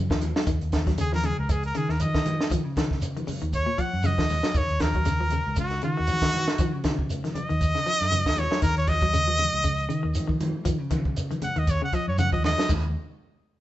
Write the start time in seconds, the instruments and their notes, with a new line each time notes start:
0.10 fingered electric bass D#2, clean electric guitar F3, kick, snare
0.21 closed hi-hat, high conga, low conga, shekere
0.36 clean electric guitar F#3, snare
0.47 fingered electric bass D#2, clean electric guitar D#3, kick, closed hi-hat, high conga, shekere
0.61 fingered electric bass D#2, closed hi-hat
0.72 kick, snare, closed hi-hat, high conga, shekere
0.87 clean electric guitar F#3, kick, snare, closed hi-hat
0.98 clean electric guitar C#3, trumpet G#4, closed hi-hat, high conga, shekere
1.12 clean electric guitar F3, trumpet A#4, snare, high conga
1.24 clean electric guitar C#3, trumpet G#4, closed hi-hat, low conga, shekere
1.38 fingered electric bass C#2, trumpet A#4
1.49 trumpet G#4, muted clean electric guitar stroke, kick, closed hi-hat, high conga, shekere
1.63 trumpet A#4, closed hi-hat
1.75 clean electric guitar C#3, fingered electric bass D#3, trumpet G#4, closed hi-hat, shekere
1.89 fingered electric bass D#2, clean electric guitar D#3, trumpet A#4, snare
2.00 fingered electric bass D#3, trumpet D#5, closed hi-hat, high conga, shekere
2.14 clean electric guitar D#3, kick, snare
2.25 fingered electric bass D#3, closed hi-hat, high conga, low conga, shekere
2.41 snare
2.50 fingered electric bass D#3, clean electric guitar F3, kick, closed hi-hat, high conga, shekere
2.65 fingered electric bass C#3
2.76 clean electric guitar D#3, kick, snare, closed hi-hat, high conga, shekere
2.91 kick, snare
3.01 closed hi-hat, high conga, low conga, shekere
3.17 clean electric guitar D#3, closed hi-hat, high conga
3.27 clean electric guitar C#3, muted fingered electric bass stroke, open hi-hat, high conga, low conga, shekere
3.42 fingered electric bass D#2, clean electric guitar D#3, closed hi-hat
3.53 trumpet C#5, kick, closed hi-hat, high conga, shekere
3.66 clean electric guitar A#2
3.78 clean electric guitar F3, trumpet F#5, kick, closed hi-hat, shekere
3.93 fingered electric bass F#2
4.03 clean electric guitar C#3, trumpet D#5, closed hi-hat, high conga, low conga, shekere
4.18 fingered electric bass D#2, clean electric guitar F3, kick, snare, high conga
4.29 open hi-hat, high conga, low conga, shekere
4.43 clean electric guitar F#3, snare
4.54 fingered electric bass D#2, clean electric guitar D#3, trumpet C#5, kick, closed hi-hat, high conga, shekere
4.69 fingered electric bass D#2, closed hi-hat
4.80 trumpet A#4, kick, snare, closed hi-hat, high conga, shekere
4.94 clean electric guitar F#3, kick, closed hi-hat
5.05 clean electric guitar C#3, snare, closed hi-hat, high conga, shekere
5.20 clean electric guitar F3, high conga
5.30 clean electric guitar C#3, closed hi-hat, low conga, shekere
5.46 fingered electric bass C#2
5.56 clean electric guitar C#3, trumpet F#4, kick, closed hi-hat, high conga, shekere
5.70 snare, closed hi-hat
5.82 clean electric guitar C#3, fingered electric bass D#3, trumpet F#4, closed hi-hat, shekere
5.97 fingered electric bass D#2, clean electric guitar D#3
6.07 fingered electric bass D#3, closed hi-hat, high conga, low conga, shekere
6.22 clean electric guitar D#3, kick, snare
6.32 fingered electric bass D#3, closed hi-hat, high conga, low conga, shekere
6.48 snare
6.58 fingered electric bass D#3, clean electric guitar F3, kick, closed hi-hat, shekere
6.74 fingered electric bass C#3
6.84 clean electric guitar D#3, kick, snare, closed hi-hat, high conga, shekere
6.99 kick
7.10 closed hi-hat, high conga, low conga, shekere
7.24 clean electric guitar D#3, snare, closed hi-hat, high conga
7.35 clean electric guitar C#3, trumpet D#5, muted fingered electric bass stroke, closed hi-hat, high conga, low conga, shekere
7.49 fingered electric bass D#2, clean electric guitar D#3, closed hi-hat
7.61 kick, closed hi-hat, high conga, shekere
7.75 clean electric guitar C#3, snare
7.86 clean electric guitar F3, snare, closed hi-hat, shekere
8.01 fingered electric bass F#2, snare
8.11 clean electric guitar C#3, closed hi-hat, high conga, low conga, shekere
8.25 fingered electric bass D#2, kick, snare, high conga
8.36 trumpet C#5, closed hi-hat, high conga, low conga, shekere
8.51 clean electric guitar F#3, snare
8.62 fingered electric bass D#2, clean electric guitar D#3, trumpet A#4, kick, closed hi-hat, high conga, shekere
8.77 fingered electric bass D#2, trumpet C#5, closed hi-hat
8.87 trumpet D#5, kick, closed hi-hat, high conga, shekere
9.01 clean electric guitar F#3, kick, closed hi-hat
9.13 clean electric guitar C#3, closed hi-hat, high conga, low conga, shekere
9.27 clean electric guitar F3, high conga
9.38 clean electric guitar C#3, closed hi-hat, high conga, low conga, shekere
9.53 fingered electric bass C#2
9.63 clean electric guitar C#3, kick, closed hi-hat, high conga, shekere
9.79 closed hi-hat
9.89 clean electric guitar C#3, fingered electric bass D#3, closed hi-hat, shekere
10.03 fingered electric bass D#2, clean electric guitar D#3
10.14 fingered electric bass D#3, closed hi-hat, high conga, low conga, shekere
10.27 clean electric guitar D#3, kick, high conga
10.40 fingered electric bass D#3, closed hi-hat, high conga, low conga, shekere
10.65 fingered electric bass D#3, clean electric guitar F3, kick, closed hi-hat, high conga, shekere
10.81 fingered electric bass C#3
10.91 clean electric guitar D#3, kick, closed hi-hat, high conga, shekere
11.05 kick
11.16 closed hi-hat, high conga, low conga, shekere
11.31 clean electric guitar D#3, closed hi-hat, high conga
11.42 clean electric guitar C#3, trumpet F#5, muted fingered electric bass stroke, closed hi-hat, low conga, shekere
11.56 fingered electric bass D#2, clean electric guitar D#3, trumpet D#5, closed hi-hat
11.67 trumpet C#5, kick, closed hi-hat, high conga, shekere
11.82 clean electric guitar C#3, trumpet F#5
11.93 clean electric guitar F3, trumpet D#5, kick, closed hi-hat, shekere
12.08 fingered electric bass F#2, trumpet C#5
12.18 clean electric guitar C#3, trumpet F#5, closed hi-hat, high conga, low conga, shekere
12.32 fingered electric bass D#2, clean electric guitar F3, trumpet D#5, kick
12.44 trumpet D#5, snare, high conga, low conga, shekere
12.58 clean electric guitar F#3, snare
12.69 fingered electric bass D#2, clean electric guitar D#3, kick, crash, low conga, shekere